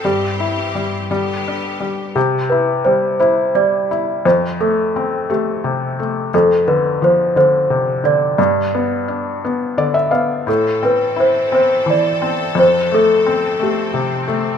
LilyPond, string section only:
\new Staff \with { instrumentName = "String section" } { \time 6/8 \key c \major \tempo 4. = 58 << { <g, g'>4. g'4. | r2. | r2. | r2. |
r2. | a'2.~ | a'2. | } \\ { <e c'>4. <d b>4. | r2. | r2. | r2. |
r2. | <e c'>2. | <f c'>2. | } >> }